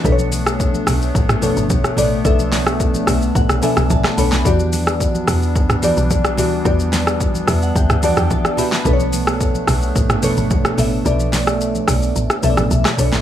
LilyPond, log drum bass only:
\new Staff \with { instrumentName = "Log drum bass" } { \clef bass \time 4/4 \key b \phrygian \tempo 4 = 109 b,,4. b,,8 a,,8. g,,8. a,,8 | b,,4. b,,8 a,,16 b,,16 r16 b,,16 a,,16 r16 b,,16 b,,16 | e,4. e,8 d,8. b,,8. d,8 | e,4. e,8 d,8. e,16 r4 |
b,,4. b,,8 a,,8. g,,8. a,,8 | b,,4. b,,8 a,,16 r16 b,,16 a,,16 b,,16 r16 b,,16 a,,16 | }